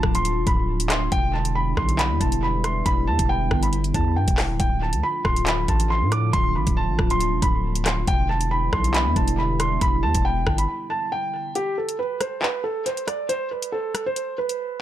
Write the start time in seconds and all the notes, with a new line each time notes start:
Already playing: D3 F3 A3 F4 A5
0.03 D1, kick, cross-stick
0.15 C6, closed hi-hat
0.25 closed hi-hat
0.37 E1
0.47 D1 B5, kick, closed hi-hat
0.80 closed hi-hat
0.90 C6, cross-stick, clap, closed hi-hat
1.12 E1 G3 B3 E4 G5, kick, closed hi-hat
1.33 A5
1.45 closed hi-hat
1.55 B5
1.77 B1 C6, kick, cross-stick
1.89 closed hi-hat
1.99 B5, clap, closed hi-hat
2.10 E2
2.20 E1 A5, kick, closed hi-hat
2.32 closed hi-hat
2.43 B5
2.64 C6, cross-stick, closed hi-hat
2.86 E1 B5, kick, closed hi-hat
3.07 E2 A5
3.19 E1, kick, closed hi-hat
3.29 G5
3.51 G1, kick, cross-stick
3.63 B5, closed hi-hat
3.73 closed hi-hat
3.84 closed hi-hat
3.94 E2 A5, kick, closed hi-hat
4.16 G2 G5
4.28 E1, kick, closed hi-hat
4.38 cross-stick, clap, open hi-hat
4.49 D1
4.60 D1 D3 F3 A3 F4 G5, kick, closed hi-hat
4.82 A5
4.93 D2, closed hi-hat
5.03 B5
5.25 D1 C6, kick, cross-stick
5.36 closed hi-hat
5.47 B5, clap, closed hi-hat
5.68 A1 A5, kick, closed hi-hat
5.80 closed hi-hat
5.90 C6
6.02 A2
6.12 D6, cross-stick, closed hi-hat
6.33 D1 C6, kick, closed hi-hat
6.55 A1 B5
6.67 D1, kick, closed hi-hat
6.77 A5
6.89 A1
6.99 D1, kick, cross-stick
7.10 C6, closed hi-hat
7.21 closed hi-hat
7.32 E1
7.42 D1 B5, kick, closed hi-hat
7.75 closed hi-hat
7.86 C6, cross-stick, clap, closed hi-hat
8.07 E1 D3 G3 B3 E4 G5, kick, closed hi-hat
8.29 A5
8.41 closed hi-hat
8.51 B5
8.73 B1 C6, kick, cross-stick
8.84 closed hi-hat
8.94 B5, clap, closed hi-hat
9.06 E2
9.16 E1 A5, kick, closed hi-hat
9.28 closed hi-hat
9.38 B5
9.60 C6, cross-stick, closed hi-hat
9.81 E1 B5, kick, closed hi-hat
10.03 E2 A5
10.15 E1, kick, closed hi-hat
10.25 G5
10.47 G1, kick, cross-stick
10.58 B5, closed hi-hat
10.90 A5
11.12 G5
11.55 G4, closed hi-hat
11.78 A4
11.89 closed hi-hat
11.99 B4
12.20 C5, cross-stick, closed hi-hat
12.42 B4, clap
12.64 A4
12.86 C5, closed hi-hat
12.97 closed hi-hat
13.07 D5, cross-stick, closed hi-hat
13.29 C5, closed hi-hat
13.51 B4
13.62 closed hi-hat
13.72 A4
13.95 cross-stick, closed hi-hat
14.06 C5
14.16 closed hi-hat
14.38 B4
14.49 closed hi-hat